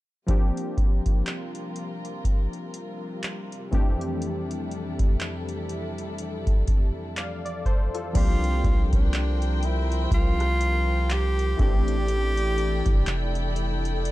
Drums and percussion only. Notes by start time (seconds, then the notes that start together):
0.28 kick, closed hi-hat
0.57 closed hi-hat
0.78 kick, closed hi-hat
1.06 kick, closed hi-hat
1.26 clap, closed hi-hat
1.55 closed hi-hat
1.76 closed hi-hat
2.05 closed hi-hat
2.25 kick, closed hi-hat
2.53 closed hi-hat
2.74 closed hi-hat
3.23 clap, closed hi-hat
3.52 closed hi-hat
3.73 kick, closed hi-hat
4.01 closed hi-hat
4.22 closed hi-hat
4.51 closed hi-hat
4.71 closed hi-hat
4.99 kick, closed hi-hat
5.20 clap, closed hi-hat
5.49 closed hi-hat
5.69 closed hi-hat
5.98 closed hi-hat
6.18 closed hi-hat
6.47 kick, closed hi-hat
6.68 kick, closed hi-hat
7.17 clap, closed hi-hat
7.46 closed hi-hat
7.65 kick, closed hi-hat
7.95 closed hi-hat
8.15 kick, closed hi-hat, crash
8.44 closed hi-hat
8.64 kick, closed hi-hat
8.93 kick, closed hi-hat
9.13 clap, closed hi-hat
9.42 closed hi-hat
9.63 closed hi-hat
9.92 closed hi-hat
10.11 kick, closed hi-hat
10.40 cross-stick, closed hi-hat
10.61 closed hi-hat
11.10 clap, closed hi-hat
11.39 closed hi-hat
11.59 kick, closed hi-hat
11.88 closed hi-hat
12.08 closed hi-hat
12.37 closed hi-hat
12.58 closed hi-hat
12.86 kick, closed hi-hat
13.07 clap, closed hi-hat
13.35 closed hi-hat
13.56 closed hi-hat
13.85 closed hi-hat
14.05 closed hi-hat